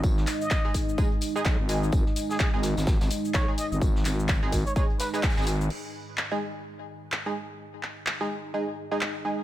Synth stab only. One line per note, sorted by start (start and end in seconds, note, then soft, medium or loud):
0.65 0.71 G#3 medium
0.65 0.71 D#4 medium
0.65 0.71 G#4 loud
0.98 1.08 G#3 medium
0.98 1.08 D#4 medium
0.98 1.08 G#4 medium
1.36 1.42 G#3 medium
1.36 1.42 D#4 medium
1.36 1.42 G#4 loud
1.69 1.84 G#3 medium
1.69 1.84 D#4 medium
1.69 1.84 G#4 medium
2.54 2.60 G#3 medium
2.54 2.60 D#4 medium
2.54 2.60 G#4 loud
3.48 3.55 G#3 medium
3.48 3.55 D#4 medium
3.48 3.55 G#4 medium
4.43 4.49 G#3 medium
4.43 4.49 D#4 medium
4.43 4.49 G#4 loud
4.76 4.86 G#3 medium
4.76 4.86 D#4 medium
4.76 4.86 G#4 medium
5.14 5.34 G#3 medium
5.14 5.34 D#4 medium
5.14 5.34 G#4 medium
5.37 5.48 G#3 medium
5.37 5.48 D#4 medium
5.37 5.48 G#4 medium
6.31 6.38 G#3 medium
6.31 6.38 D#4 medium
6.31 6.38 G#4 loud
7.26 7.33 G#3 medium
7.26 7.33 D#4 medium
7.26 7.33 G#4 medium
8.21 8.27 G#3 medium
8.21 8.27 D#4 medium
8.21 8.27 G#4 loud
8.54 8.64 G#3 medium
8.54 8.64 D#4 medium
8.54 8.64 G#4 medium
8.91 8.98 G#3 medium
8.91 8.98 D#4 medium
8.91 8.98 G#4 loud
9.25 9.40 G#3 medium
9.25 9.40 D#4 medium
9.25 9.40 G#4 medium